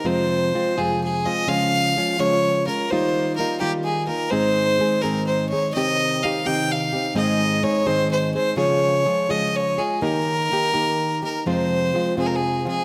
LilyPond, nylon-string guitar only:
\new Staff \with { instrumentName = "Nylon-string guitar" } { \time 6/8 \key aes \major \tempo 4. = 84 <f, c f aes c' f'>4 <f aes c' f'>8 <f, c f aes c' f'>4 <f aes c' f'>8 | <des f aes des' f'>4 <f aes des' f'>8 <des f aes des' f'>4 <aes des' f'>8 | <ees g bes ees' f'>4 <g bes ees' f'>8 <ees g bes ees' f'>4 <bes ees' f'>8 | <aes, ees aes c' ees' aes'>4 <aes c' ees' aes'>8 <aes, ees aes c' ees' aes'>4 <aes c' ees' aes'>8 |
<c ees c' ees' g'>4 <ees c' ees' g'>8 <c ees c' ees' g'>4 <c' ees' g'>8 | <aes, ees aes c' ees' aes'>4 <aes c' ees' aes'>8 <aes, ees aes c' ees' aes'>4 <aes c' ees' aes'>8 | <des f aes f' aes'>4 <f aes f' aes'>8 <des f aes f' aes'>4 <aes f' aes'>8 | <ees bes ees' g'>4 <ees bes ees' g'>8 <ees bes ees' g'>4 <bes ees' g'>8 |
<f, c f aes c' f'>4 <f aes c' f'>8 <f, c f aes c' f'>4 <f aes c' f'>8 | }